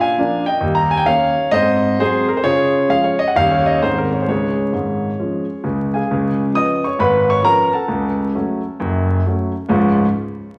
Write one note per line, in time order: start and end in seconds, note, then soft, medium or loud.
0.00 0.19 A#2 medium
0.00 0.19 D4 soft
0.00 0.20 D5 medium
0.00 0.44 F5 loud
0.00 0.47 G#5 medium
0.18 0.43 F3 soft
0.18 0.43 A#3 soft
0.18 0.43 D4 medium
0.46 0.76 D#5 medium
0.46 0.77 G5 medium
0.61 1.00 D#2 medium
0.61 0.88 G3 medium
0.75 0.91 A#5 medium
0.91 1.00 G#5 medium
0.97 1.07 G5 medium
1.05 1.31 D#3 medium
1.05 1.32 A#3 soft
1.05 1.31 C#4 soft
1.05 1.50 C#5 medium
1.05 1.53 F5 loud
1.51 1.91 G#2 medium
1.51 1.79 C4 medium
1.51 1.96 C5 medium
1.51 1.98 D#5 loud
1.99 2.24 F#3 soft
1.99 2.24 G#3 medium
1.99 2.25 C4 medium
1.99 2.28 G#4 medium
1.99 2.29 C5 loud
2.28 2.37 A#4 medium
2.37 2.45 C5 medium
2.44 2.83 C#3 medium
2.44 2.70 F4 medium
2.44 2.87 G#4 medium
2.44 2.90 C#5 loud
2.88 3.14 F3 soft
2.88 3.14 G#3 soft
2.88 3.15 C#4 medium
2.88 3.05 F5 medium
3.04 3.19 C#5 medium
3.19 3.27 D#5 loud
3.28 3.35 F#5 medium
3.36 3.74 D#2 medium
3.36 3.61 D#3 medium
3.36 3.62 G3 medium
3.36 3.62 C#4 medium
3.36 3.51 F5 loud
3.51 3.66 C#5 medium
3.66 3.73 D#5 medium
3.74 3.81 C#5 medium
3.82 4.20 G#2 medium
3.82 4.06 D#3 soft
3.82 4.07 G#3 soft
3.82 4.08 C4 soft
3.82 4.07 D#4 soft
3.82 3.96 C5 medium
3.98 4.12 A#4 medium
4.13 4.20 C#5 medium
4.22 4.28 C5 medium
4.28 4.64 C#2 medium
4.28 4.64 C#3 soft
4.28 5.61 G#4 soft
4.28 5.64 C#5 medium
4.73 5.09 G#1 soft
4.73 5.09 G#2 medium
5.19 5.44 F3 soft
5.19 5.44 G#3 soft
5.19 5.44 C#4 soft
5.64 6.00 C#2 medium
5.64 6.00 C#3 medium
5.94 6.51 G#4 soft
5.94 6.51 F5 soft
5.94 6.54 G#5 medium
6.11 6.48 C#2 medium
6.11 6.48 C#3 medium
6.54 6.79 F3 soft
6.54 6.80 B3 soft
6.54 6.80 C#4 soft
6.54 6.83 D#5 medium
6.54 6.84 D#6 medium
6.84 7.00 C#5 medium
6.84 6.99 C#6 medium
6.99 7.38 G#1 medium
6.99 7.37 G#2 medium
6.99 7.27 B4 medium
6.99 7.29 B5 loud
7.30 7.44 C#5 medium
7.30 7.45 C#6 medium
7.43 7.68 F3 soft
7.43 7.69 B3 medium
7.43 7.69 C#4 soft
7.43 7.72 A#4 medium
7.43 7.74 A#5 loud
7.73 9.22 A4 soft
7.73 9.22 F#5 soft
7.73 9.25 A5 medium
7.88 8.27 C#2 medium
7.88 8.28 C#3 medium
8.35 8.60 F#3 soft
8.35 8.60 A3 soft
8.35 8.60 C#4 soft
8.80 9.19 F#1 medium
8.80 9.19 F#2 medium
9.26 9.51 F#3 soft
9.26 9.51 A3 soft
9.26 9.52 C#4 soft
9.69 10.01 C#2 medium
9.69 10.00 G#2 medium
9.69 10.01 F3 medium
9.69 10.01 G#3 medium
9.69 10.01 C#4 medium
9.69 10.02 F4 medium
9.69 10.02 C#6 soft